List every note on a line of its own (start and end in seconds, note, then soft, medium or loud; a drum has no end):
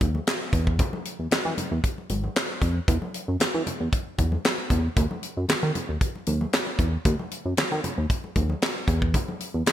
0.01 0.19 D#2 medium
0.01 kick medium
0.01 closed hi-hat medium
0.01 high conga medium
0.15 high conga medium
0.27 snare loud
0.27 clap medium
0.27 closed hi-hat medium
0.53 0.81 E2 loud
0.53 kick medium
0.53 closed hi-hat medium
0.67 kick medium
0.79 kick loud
0.79 closed hi-hat medium
0.79 muted conga soft
0.79 low conga medium
0.93 muted conga soft
0.93 high conga medium
1.05 closed hi-hat medium
1.19 1.28 E2 medium
1.31 1.37 E3 soft
1.31 snare loud
1.31 clap medium
1.31 closed hi-hat medium
1.31 high conga medium
1.45 1.54 E3 medium
1.45 muted conga soft
1.45 high conga medium
1.58 closed hi-hat medium
1.58 high conga medium
1.58 low conga medium
1.71 1.80 E2 medium
1.84 kick medium
1.84 closed hi-hat medium
1.84 muted conga soft
1.98 muted conga soft
2.09 2.28 G#1 medium
2.09 closed hi-hat medium
2.09 high conga medium
2.24 high conga medium
2.36 snare loud
2.36 clap medium
2.36 closed hi-hat medium
2.62 2.80 F2 medium
2.62 kick medium
2.62 closed hi-hat medium
2.88 2.98 E2 loud
2.88 kick loud
2.88 closed hi-hat medium
2.88 low conga medium
3.02 high conga medium
3.14 closed hi-hat medium
3.28 3.37 F#2 medium
3.40 3.46 E3 soft
3.40 snare medium
3.40 clap medium
3.40 closed hi-hat medium
3.40 high conga medium
3.54 3.63 E3 medium
3.54 high conga medium
3.67 closed hi-hat medium
3.67 high conga medium
3.67 low conga medium
3.80 3.89 E2 medium
3.92 kick loud
3.92 closed hi-hat medium
3.92 muted conga soft
4.18 4.37 E2 medium
4.18 kick medium
4.18 closed hi-hat medium
4.18 high conga medium
4.32 high conga medium
4.44 snare loud
4.44 clap medium
4.44 closed hi-hat medium
4.44 muted conga soft
4.58 muted conga soft
4.70 4.89 E2 medium
4.70 kick medium
4.70 closed hi-hat medium
4.70 low conga medium
4.96 5.06 D#2 loud
4.96 kick loud
4.96 closed hi-hat medium
4.96 muted conga soft
4.96 low conga medium
5.11 high conga medium
5.23 closed hi-hat medium
5.37 5.45 F#2 medium
5.49 5.55 D#3 soft
5.49 snare loud
5.49 clap medium
5.49 closed hi-hat medium
5.49 muted conga soft
5.49 high conga medium
5.63 5.71 D#3 medium
5.63 muted conga soft
5.63 high conga soft
5.75 closed hi-hat medium
5.75 high conga medium
5.75 low conga medium
5.89 5.97 D#2 medium
6.01 kick loud
6.01 closed hi-hat medium
6.15 muted conga soft
6.26 6.45 D#2 medium
6.26 closed hi-hat medium
6.26 high conga medium
6.41 high conga medium
6.53 snare loud
6.53 clap medium
6.53 closed hi-hat medium
6.53 muted conga soft
6.67 muted conga soft
6.79 6.97 E2 medium
6.79 kick medium
6.79 closed hi-hat medium
7.05 7.15 D#2 loud
7.05 kick loud
7.05 closed hi-hat medium
7.05 muted conga soft
7.05 low conga medium
7.19 high conga medium
7.31 closed hi-hat medium
7.45 7.54 F#2 medium
7.57 7.63 D#3 soft
7.57 snare loud
7.57 clap medium
7.57 closed hi-hat medium
7.57 muted conga soft
7.57 high conga medium
7.71 7.80 D#3 medium
7.71 high conga soft
7.84 closed hi-hat medium
7.84 high conga medium
7.84 low conga medium
7.98 8.06 D#2 medium
8.10 kick loud
8.10 closed hi-hat medium
8.10 muted conga soft
8.24 muted conga soft
8.36 8.54 D#2 medium
8.36 kick medium
8.36 closed hi-hat medium
8.36 high conga medium
8.50 high conga medium
8.62 snare medium
8.62 clap medium
8.62 closed hi-hat medium
8.62 muted conga soft
8.76 muted conga soft
8.88 9.15 E2 loud
8.88 kick medium
8.88 closed hi-hat medium
9.02 kick loud
9.14 kick loud
9.14 closed hi-hat medium
9.14 low conga medium
9.28 high conga medium
9.40 closed hi-hat medium
9.54 9.63 E2 medium
9.66 9.72 E3 soft
9.66 snare loud
9.66 clap medium
9.66 closed hi-hat medium
9.66 high conga medium